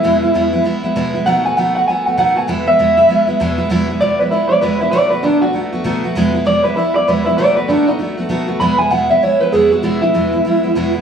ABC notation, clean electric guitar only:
X:1
M:4/4
L:1/8
Q:"Swing" 1/4=196
K:E
V:1 name="Clean electric guitar"
E4 z4 | f g f f g f f g | f e4 z3 | z2 =d B E d B E |
=d B =D F z4 | z2 =d B E d B E | =d B =D ^D z4 | b g f e c B G F |
E E6 z |]